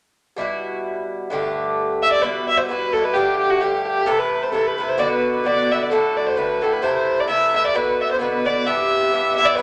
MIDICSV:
0, 0, Header, 1, 3, 480
1, 0, Start_track
1, 0, Key_signature, 1, "minor"
1, 0, Tempo, 459770
1, 400, Time_signature, 2, 2, 24, 8
1, 10044, End_track
2, 0, Start_track
2, 0, Title_t, "Fiddle"
2, 0, Program_c, 0, 110
2, 2111, Note_on_c, 0, 76, 80
2, 2211, Note_off_c, 0, 76, 0
2, 2216, Note_on_c, 0, 74, 82
2, 2313, Note_on_c, 0, 71, 70
2, 2329, Note_off_c, 0, 74, 0
2, 2591, Note_off_c, 0, 71, 0
2, 2597, Note_on_c, 0, 76, 82
2, 2692, Note_on_c, 0, 72, 68
2, 2707, Note_off_c, 0, 76, 0
2, 2781, Note_off_c, 0, 72, 0
2, 2787, Note_on_c, 0, 71, 84
2, 3054, Note_on_c, 0, 69, 75
2, 3069, Note_off_c, 0, 71, 0
2, 3173, Note_on_c, 0, 71, 87
2, 3188, Note_off_c, 0, 69, 0
2, 3274, Note_on_c, 0, 67, 71
2, 3290, Note_off_c, 0, 71, 0
2, 3529, Note_off_c, 0, 67, 0
2, 3536, Note_on_c, 0, 67, 66
2, 3653, Note_on_c, 0, 66, 70
2, 3669, Note_off_c, 0, 67, 0
2, 3767, Note_on_c, 0, 67, 68
2, 3783, Note_off_c, 0, 66, 0
2, 4030, Note_off_c, 0, 67, 0
2, 4037, Note_on_c, 0, 67, 77
2, 4245, Note_on_c, 0, 69, 80
2, 4260, Note_off_c, 0, 67, 0
2, 4371, Note_on_c, 0, 71, 72
2, 4387, Note_off_c, 0, 69, 0
2, 4621, Note_on_c, 0, 72, 66
2, 4636, Note_off_c, 0, 71, 0
2, 4715, Note_off_c, 0, 72, 0
2, 4721, Note_on_c, 0, 69, 73
2, 4872, Note_on_c, 0, 71, 68
2, 4888, Note_off_c, 0, 69, 0
2, 5097, Note_on_c, 0, 72, 76
2, 5113, Note_off_c, 0, 71, 0
2, 5211, Note_on_c, 0, 74, 71
2, 5227, Note_off_c, 0, 72, 0
2, 5336, Note_off_c, 0, 74, 0
2, 5342, Note_on_c, 0, 71, 70
2, 5565, Note_off_c, 0, 71, 0
2, 5585, Note_on_c, 0, 71, 66
2, 5706, Note_on_c, 0, 74, 81
2, 5722, Note_off_c, 0, 71, 0
2, 5966, Note_on_c, 0, 76, 58
2, 5981, Note_off_c, 0, 74, 0
2, 6074, Note_on_c, 0, 74, 78
2, 6090, Note_off_c, 0, 76, 0
2, 6172, Note_off_c, 0, 74, 0
2, 6178, Note_on_c, 0, 69, 70
2, 6437, Note_on_c, 0, 74, 58
2, 6453, Note_off_c, 0, 69, 0
2, 6544, Note_on_c, 0, 72, 71
2, 6560, Note_off_c, 0, 74, 0
2, 6645, Note_on_c, 0, 71, 72
2, 6660, Note_off_c, 0, 72, 0
2, 6918, Note_on_c, 0, 69, 62
2, 6934, Note_off_c, 0, 71, 0
2, 7018, Note_on_c, 0, 71, 75
2, 7034, Note_off_c, 0, 69, 0
2, 7119, Note_on_c, 0, 72, 76
2, 7135, Note_off_c, 0, 71, 0
2, 7252, Note_off_c, 0, 72, 0
2, 7259, Note_on_c, 0, 72, 67
2, 7516, Note_on_c, 0, 74, 78
2, 7531, Note_off_c, 0, 72, 0
2, 7604, Note_off_c, 0, 74, 0
2, 7610, Note_on_c, 0, 76, 66
2, 7859, Note_off_c, 0, 76, 0
2, 7888, Note_on_c, 0, 76, 75
2, 7978, Note_off_c, 0, 76, 0
2, 8001, Note_on_c, 0, 74, 77
2, 8098, Note_on_c, 0, 71, 70
2, 8113, Note_off_c, 0, 74, 0
2, 8365, Note_on_c, 0, 76, 68
2, 8380, Note_off_c, 0, 71, 0
2, 8463, Note_off_c, 0, 76, 0
2, 8474, Note_on_c, 0, 72, 61
2, 8559, Note_off_c, 0, 72, 0
2, 8566, Note_on_c, 0, 71, 62
2, 8687, Note_off_c, 0, 71, 0
2, 8693, Note_on_c, 0, 71, 70
2, 8830, Note_on_c, 0, 74, 70
2, 8846, Note_off_c, 0, 71, 0
2, 9043, Note_on_c, 0, 76, 70
2, 9059, Note_off_c, 0, 74, 0
2, 9766, Note_off_c, 0, 76, 0
2, 9772, Note_on_c, 0, 76, 83
2, 9870, Note_on_c, 0, 74, 76
2, 9886, Note_off_c, 0, 76, 0
2, 9971, Note_on_c, 0, 71, 82
2, 9987, Note_off_c, 0, 74, 0
2, 10044, Note_off_c, 0, 71, 0
2, 10044, End_track
3, 0, Start_track
3, 0, Title_t, "Bouzouki"
3, 0, Program_c, 1, 25
3, 381, Note_on_c, 1, 47, 60
3, 393, Note_on_c, 1, 55, 66
3, 407, Note_on_c, 1, 64, 67
3, 423, Note_on_c, 1, 66, 69
3, 1354, Note_off_c, 1, 47, 0
3, 1359, Note_on_c, 1, 43, 68
3, 1367, Note_off_c, 1, 64, 0
3, 1369, Note_off_c, 1, 55, 0
3, 1373, Note_on_c, 1, 50, 76
3, 1375, Note_off_c, 1, 66, 0
3, 1383, Note_on_c, 1, 57, 73
3, 1396, Note_on_c, 1, 67, 64
3, 2321, Note_off_c, 1, 43, 0
3, 2325, Note_on_c, 1, 47, 61
3, 2327, Note_off_c, 1, 50, 0
3, 2330, Note_off_c, 1, 57, 0
3, 2331, Note_on_c, 1, 55, 62
3, 2334, Note_on_c, 1, 64, 62
3, 2335, Note_off_c, 1, 67, 0
3, 2339, Note_on_c, 1, 66, 73
3, 2791, Note_off_c, 1, 47, 0
3, 2798, Note_off_c, 1, 55, 0
3, 2803, Note_on_c, 1, 47, 47
3, 2806, Note_off_c, 1, 64, 0
3, 2811, Note_on_c, 1, 55, 50
3, 2813, Note_off_c, 1, 66, 0
3, 2819, Note_on_c, 1, 64, 50
3, 2829, Note_on_c, 1, 66, 55
3, 3068, Note_off_c, 1, 47, 0
3, 3073, Note_off_c, 1, 55, 0
3, 3080, Note_on_c, 1, 47, 54
3, 3084, Note_off_c, 1, 64, 0
3, 3086, Note_on_c, 1, 55, 48
3, 3090, Note_off_c, 1, 66, 0
3, 3099, Note_on_c, 1, 64, 49
3, 3104, Note_on_c, 1, 66, 47
3, 3280, Note_off_c, 1, 47, 0
3, 3284, Note_on_c, 1, 43, 59
3, 3289, Note_off_c, 1, 55, 0
3, 3292, Note_off_c, 1, 64, 0
3, 3293, Note_on_c, 1, 50, 63
3, 3296, Note_on_c, 1, 57, 71
3, 3298, Note_off_c, 1, 66, 0
3, 3302, Note_on_c, 1, 67, 71
3, 3755, Note_off_c, 1, 43, 0
3, 3765, Note_off_c, 1, 50, 0
3, 3768, Note_on_c, 1, 43, 57
3, 3772, Note_off_c, 1, 57, 0
3, 3775, Note_off_c, 1, 67, 0
3, 3778, Note_on_c, 1, 50, 43
3, 3787, Note_on_c, 1, 57, 57
3, 3793, Note_on_c, 1, 67, 50
3, 4235, Note_off_c, 1, 43, 0
3, 4239, Note_on_c, 1, 48, 71
3, 4242, Note_off_c, 1, 57, 0
3, 4248, Note_off_c, 1, 50, 0
3, 4252, Note_on_c, 1, 52, 73
3, 4253, Note_off_c, 1, 67, 0
3, 4255, Note_on_c, 1, 57, 62
3, 4258, Note_on_c, 1, 64, 73
3, 4708, Note_off_c, 1, 48, 0
3, 4714, Note_off_c, 1, 52, 0
3, 4721, Note_on_c, 1, 48, 54
3, 4725, Note_off_c, 1, 57, 0
3, 4727, Note_on_c, 1, 52, 57
3, 4732, Note_off_c, 1, 64, 0
3, 4738, Note_on_c, 1, 57, 56
3, 4744, Note_on_c, 1, 64, 56
3, 4976, Note_off_c, 1, 48, 0
3, 4981, Note_off_c, 1, 52, 0
3, 4989, Note_on_c, 1, 48, 52
3, 4993, Note_off_c, 1, 57, 0
3, 4993, Note_on_c, 1, 52, 50
3, 4999, Note_off_c, 1, 64, 0
3, 5006, Note_on_c, 1, 57, 46
3, 5011, Note_on_c, 1, 64, 58
3, 5191, Note_off_c, 1, 48, 0
3, 5196, Note_on_c, 1, 47, 71
3, 5198, Note_off_c, 1, 52, 0
3, 5202, Note_off_c, 1, 57, 0
3, 5202, Note_on_c, 1, 50, 70
3, 5206, Note_on_c, 1, 59, 71
3, 5209, Note_off_c, 1, 64, 0
3, 5214, Note_on_c, 1, 66, 77
3, 5663, Note_off_c, 1, 47, 0
3, 5676, Note_on_c, 1, 47, 49
3, 5678, Note_off_c, 1, 50, 0
3, 5686, Note_off_c, 1, 59, 0
3, 5690, Note_off_c, 1, 66, 0
3, 5690, Note_on_c, 1, 50, 56
3, 5696, Note_on_c, 1, 59, 58
3, 5701, Note_on_c, 1, 66, 59
3, 5947, Note_off_c, 1, 47, 0
3, 5955, Note_off_c, 1, 50, 0
3, 5960, Note_on_c, 1, 47, 43
3, 5963, Note_off_c, 1, 59, 0
3, 5965, Note_off_c, 1, 66, 0
3, 5967, Note_on_c, 1, 50, 43
3, 5977, Note_on_c, 1, 59, 51
3, 5983, Note_on_c, 1, 66, 49
3, 6164, Note_off_c, 1, 50, 0
3, 6167, Note_off_c, 1, 47, 0
3, 6171, Note_on_c, 1, 45, 59
3, 6176, Note_off_c, 1, 59, 0
3, 6176, Note_on_c, 1, 50, 75
3, 6179, Note_off_c, 1, 66, 0
3, 6186, Note_on_c, 1, 57, 58
3, 6189, Note_on_c, 1, 66, 72
3, 6627, Note_off_c, 1, 45, 0
3, 6640, Note_off_c, 1, 50, 0
3, 6640, Note_on_c, 1, 45, 44
3, 6648, Note_off_c, 1, 57, 0
3, 6651, Note_off_c, 1, 66, 0
3, 6652, Note_on_c, 1, 50, 56
3, 6660, Note_on_c, 1, 57, 55
3, 6664, Note_on_c, 1, 66, 50
3, 6893, Note_off_c, 1, 45, 0
3, 6900, Note_off_c, 1, 50, 0
3, 6905, Note_on_c, 1, 45, 50
3, 6911, Note_off_c, 1, 57, 0
3, 6912, Note_on_c, 1, 50, 51
3, 6917, Note_off_c, 1, 66, 0
3, 6924, Note_on_c, 1, 57, 47
3, 6930, Note_on_c, 1, 66, 52
3, 7117, Note_off_c, 1, 45, 0
3, 7118, Note_off_c, 1, 57, 0
3, 7122, Note_off_c, 1, 50, 0
3, 7122, Note_on_c, 1, 48, 66
3, 7129, Note_on_c, 1, 52, 65
3, 7130, Note_on_c, 1, 57, 68
3, 7131, Note_off_c, 1, 66, 0
3, 7143, Note_on_c, 1, 64, 69
3, 7582, Note_off_c, 1, 48, 0
3, 7594, Note_on_c, 1, 48, 52
3, 7595, Note_off_c, 1, 52, 0
3, 7602, Note_off_c, 1, 57, 0
3, 7604, Note_off_c, 1, 64, 0
3, 7607, Note_on_c, 1, 52, 48
3, 7614, Note_on_c, 1, 57, 57
3, 7617, Note_on_c, 1, 64, 59
3, 7867, Note_off_c, 1, 48, 0
3, 7876, Note_off_c, 1, 52, 0
3, 7879, Note_on_c, 1, 48, 47
3, 7880, Note_off_c, 1, 57, 0
3, 7881, Note_off_c, 1, 64, 0
3, 7891, Note_on_c, 1, 52, 54
3, 7894, Note_on_c, 1, 57, 57
3, 7906, Note_on_c, 1, 64, 50
3, 8076, Note_off_c, 1, 48, 0
3, 8080, Note_on_c, 1, 47, 59
3, 8083, Note_off_c, 1, 52, 0
3, 8087, Note_on_c, 1, 50, 59
3, 8090, Note_off_c, 1, 57, 0
3, 8091, Note_off_c, 1, 64, 0
3, 8094, Note_on_c, 1, 59, 63
3, 8096, Note_on_c, 1, 66, 61
3, 8540, Note_off_c, 1, 47, 0
3, 8549, Note_off_c, 1, 50, 0
3, 8552, Note_on_c, 1, 47, 53
3, 8561, Note_on_c, 1, 50, 51
3, 8564, Note_off_c, 1, 66, 0
3, 8568, Note_off_c, 1, 59, 0
3, 8572, Note_on_c, 1, 59, 55
3, 8576, Note_on_c, 1, 66, 58
3, 8810, Note_off_c, 1, 47, 0
3, 8819, Note_off_c, 1, 50, 0
3, 8822, Note_off_c, 1, 59, 0
3, 8823, Note_on_c, 1, 47, 52
3, 8832, Note_off_c, 1, 66, 0
3, 8832, Note_on_c, 1, 50, 51
3, 8835, Note_on_c, 1, 59, 49
3, 8845, Note_on_c, 1, 66, 47
3, 9035, Note_off_c, 1, 47, 0
3, 9037, Note_off_c, 1, 59, 0
3, 9039, Note_off_c, 1, 50, 0
3, 9041, Note_on_c, 1, 43, 60
3, 9046, Note_off_c, 1, 66, 0
3, 9050, Note_on_c, 1, 59, 62
3, 9051, Note_on_c, 1, 52, 53
3, 9058, Note_on_c, 1, 67, 73
3, 9506, Note_off_c, 1, 43, 0
3, 9518, Note_off_c, 1, 52, 0
3, 9518, Note_on_c, 1, 43, 58
3, 9523, Note_off_c, 1, 59, 0
3, 9530, Note_on_c, 1, 52, 49
3, 9534, Note_on_c, 1, 59, 52
3, 9538, Note_off_c, 1, 67, 0
3, 9542, Note_on_c, 1, 67, 51
3, 9773, Note_off_c, 1, 43, 0
3, 9783, Note_off_c, 1, 52, 0
3, 9786, Note_on_c, 1, 43, 54
3, 9794, Note_off_c, 1, 59, 0
3, 9796, Note_on_c, 1, 52, 52
3, 9800, Note_off_c, 1, 67, 0
3, 9806, Note_on_c, 1, 59, 57
3, 9813, Note_on_c, 1, 67, 49
3, 9978, Note_off_c, 1, 43, 0
3, 9987, Note_off_c, 1, 52, 0
3, 9990, Note_on_c, 1, 43, 76
3, 9993, Note_off_c, 1, 59, 0
3, 9999, Note_on_c, 1, 52, 67
3, 10006, Note_on_c, 1, 59, 75
3, 10008, Note_off_c, 1, 67, 0
3, 10044, Note_off_c, 1, 43, 0
3, 10044, Note_off_c, 1, 52, 0
3, 10044, Note_off_c, 1, 59, 0
3, 10044, End_track
0, 0, End_of_file